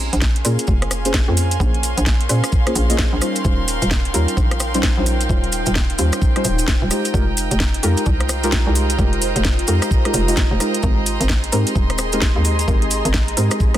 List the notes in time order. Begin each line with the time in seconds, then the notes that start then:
Already playing: A#1 C#4 G#4 A#4 D#5 F5 G#5 A#5 C6
0.13 A#1, closed hi-hat, maracas
0.22 kick, snare, maracas
0.36 closed hi-hat
0.45 A#2 A#3 C#4 F4 G#4 A#4, open hi-hat, maracas
0.59 closed hi-hat, maracas
0.67 F1, kick, maracas
0.82 cross-stick, closed hi-hat
0.91 cross-stick, open hi-hat, maracas
1.05 A#3 C#4 F4 G#4 C5, closed hi-hat, maracas
1.14 kick, snare, maracas
1.28 F2 A#3 C#4 F4 G#4 C5
1.37 open hi-hat, maracas
1.51 closed hi-hat, maracas
1.60 A#1 A#3 C#4 F4 G#4 C5, kick, maracas
1.74 closed hi-hat
1.83 open hi-hat, maracas
1.98 A#1, closed hi-hat, maracas
2.06 kick, snare, maracas
2.21 closed hi-hat
2.29 A#2 A#3 C#4 F4 G#4 C5, open hi-hat, maracas
2.44 cross-stick, closed hi-hat, maracas
2.52 kick, maracas
2.67 A#3 C#4 F4 G#4 C5, cross-stick, closed hi-hat
2.75 A#1 A#3 C#4 F4 G#4 C5, open hi-hat, maracas
2.90 A#3 C#4 F4 G#4 D#5, open hi-hat, maracas
2.98 kick, snare, maracas
3.13 A#1
3.21 G3 C#4 D#4 F4 C5 G5, cross-stick, open hi-hat, maracas
3.36 closed hi-hat, maracas
3.45 D#1 G3 C#4 D#4 F4 C5, kick, maracas
3.68 G5, open hi-hat, maracas
3.82 D#1, closed hi-hat, maracas
3.91 kick, snare, maracas
4.05 closed hi-hat
4.14 D#2 G3 C#4 D#4 F4 A#4, open hi-hat, maracas
4.28 closed hi-hat, maracas
4.37 A#1, kick, maracas
4.51 cross-stick, closed hi-hat
4.60 cross-stick, open hi-hat, maracas
4.74 G3 C#4 D#4 F4 C5, closed hi-hat, maracas
4.83 kick, snare, maracas
4.97 A#1 G3 C#4 D#4 F4 C5
5.06 open hi-hat, maracas
5.21 closed hi-hat, maracas
5.29 D#1 G3 C#4 D#4 F4 C5, kick, maracas
5.44 closed hi-hat
5.52 open hi-hat, maracas
5.66 D#1, closed hi-hat, maracas
5.75 kick, snare, maracas
5.90 closed hi-hat
5.98 D#2 G3 C#4 D#4 F4 C5, open hi-hat, maracas
6.12 cross-stick, closed hi-hat, maracas
6.22 kick, maracas
6.36 G3 C#4 D#4 F4 C5, cross-stick, closed hi-hat
6.44 D#1, open hi-hat, maracas
6.58 open hi-hat, maracas
6.68 kick, snare, maracas
6.82 D#1
6.91 G#3 D#4 F4 G4 C5 D#5 A#5, cross-stick, open hi-hat, maracas
7.05 closed hi-hat, maracas
7.14 F1 G#3 D#4 F4 G4 A#4, kick, maracas
7.19 C5
7.37 open hi-hat, maracas
7.51 F1, closed hi-hat, maracas
7.60 kick, snare, maracas
7.74 closed hi-hat
7.83 F2 G#3 D#4 F4 G4 A#4, open hi-hat, maracas
7.97 closed hi-hat, maracas
8.06 C2, kick, maracas
8.20 cross-stick, closed hi-hat
8.29 cross-stick, open hi-hat, maracas
8.43 G#3 D#4 F4 G4 A#4, closed hi-hat, maracas
8.52 kick, snare, maracas
8.67 C2 G#3 D#4 F4 G4 A#4
8.75 open hi-hat, maracas
8.90 closed hi-hat, maracas
8.99 F1 G#3 D#4 F4 G4 A#4, kick, maracas
9.13 closed hi-hat
9.22 open hi-hat, maracas
9.36 F1, closed hi-hat, maracas
9.44 kick, snare, maracas
9.59 closed hi-hat
9.67 F2 G#3 D#4 F4 G4 A#4, open hi-hat, maracas
9.82 cross-stick, closed hi-hat, maracas
9.91 kick, maracas
10.05 G#3 D#4 F4 G4 A#4, cross-stick, closed hi-hat
10.14 F1 G#3 D#4 F4 G4 A#4, open hi-hat, maracas
10.28 G#3 D#4 F4 G4 D#5, open hi-hat, maracas
10.37 kick, snare, maracas
10.51 F1
10.60 G#3 D#4 F4 G4 A#4, cross-stick, open hi-hat, maracas
10.74 closed hi-hat, maracas
10.83 G#1 G#3 C4 D#4 G4 G#4 A#4 C6, kick, maracas
10.98 D#5 A#5
11.06 open hi-hat, maracas
11.21 G#1, closed hi-hat, maracas
11.29 kick, snare, maracas
11.44 C6, closed hi-hat
11.52 G#2 G#3 C4 D#4 G4 A#4, open hi-hat, maracas
11.67 closed hi-hat, maracas
11.75 D#1, kick, maracas
11.90 cross-stick, closed hi-hat
11.98 cross-stick, open hi-hat, maracas
12.12 G#3 C4 D#4 G4 A#4, closed hi-hat, maracas
12.22 kick, snare, maracas
12.36 D#2 G#3 C4 D#4 G4 A#4
12.45 open hi-hat, maracas
12.59 closed hi-hat, maracas
12.68 G#1 G#3 C4 D#4 G4 A#4, kick, maracas
12.82 closed hi-hat
12.91 open hi-hat, maracas
13.05 G#1, closed hi-hat, maracas
13.14 kick, snare, maracas
13.28 closed hi-hat
13.37 G#2 G#3 C4 D#4 G4 A#4, open hi-hat, maracas
13.51 cross-stick, closed hi-hat, maracas
13.60 kick, maracas
13.74 G#3 C4 D#4 G4 A#4, cross-stick, closed hi-hat